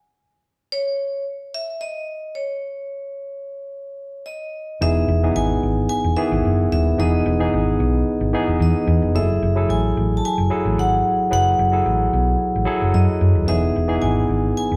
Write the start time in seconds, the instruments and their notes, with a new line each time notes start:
0.72 vibraphone C#5
1.54 vibraphone E5
1.81 vibraphone D#5
2.35 vibraphone C#5
4.26 vibraphone D#5
4.81 fingered electric bass E1, tine electric piano E3 B3 D#4 G#4, vibraphone E5
5.08 fingered electric bass E1
5.23 tine electric piano E3 B3 D#4 G#4
5.36 fingered electric bass G#1, vibraphone G#5
5.63 fingered electric bass G#1
5.89 vibraphone G#5
6.04 fingered electric bass E1
6.16 tine electric piano D#3 E3 B3 G#4, vibraphone E5
6.32 fingered electric bass G#1
6.45 fingered electric bass F#1
6.72 fingered electric bass D#1, vibraphone E5
6.98 fingered electric bass E1, tine electric piano E3 B3 D#4 G#4, vibraphone D#5
7.26 fingered electric bass E1
7.39 tine electric piano E3 B3 D#4 G#4
7.54 fingered electric bass G#1
7.80 fingered electric bass B1
8.21 fingered electric bass G#1
8.33 tine electric piano E3 B3 D#4 G#4
8.47 fingered electric bass E1
8.60 fingered electric bass E2, vibraphone D#5
8.87 fingered electric bass E2
9.02 fingered electric bass F1
9.14 fingered electric bass F#1, tine electric piano F#3 E4 G#4 A4, vibraphone E5
9.43 fingered electric bass F#1
9.55 tine electric piano F#3 E4 G#4 A4
9.69 fingered electric bass A1, vibraphone G#5
9.97 fingered electric bass A1
10.17 vibraphone A5
10.25 vibraphone G#5
10.38 fingered electric bass F#1
10.50 tine electric piano F#3 E4 G#4 A4
10.65 fingered electric bass A1
10.78 fingered electric bass G#1, vibraphone F#5
11.30 fingered electric bass F#1, tine electric piano F#3 E4 G#4 B4, vibraphone F#5
11.59 fingered electric bass F#1
11.72 tine electric piano F#3 E4 G#4 A4
11.86 fingered electric bass A1
12.13 fingered electric bass B1
12.55 fingered electric bass A1
12.65 tine electric piano F#3 E4 G#4 A4
12.82 fingered electric bass F#1
12.94 fingered electric bass F#2, vibraphone D#5
13.21 fingered electric bass F#2
13.35 fingered electric bass D#1
13.47 fingered electric bass E1, tine electric piano E3 B3 D#4 G#4, vibraphone E5
13.76 fingered electric bass E1
13.88 tine electric piano E3 B3 D#4 G#4
14.02 fingered electric bass G#1, vibraphone G#5
14.29 fingered electric bass G#1
14.57 vibraphone G#5
14.72 fingered electric bass E1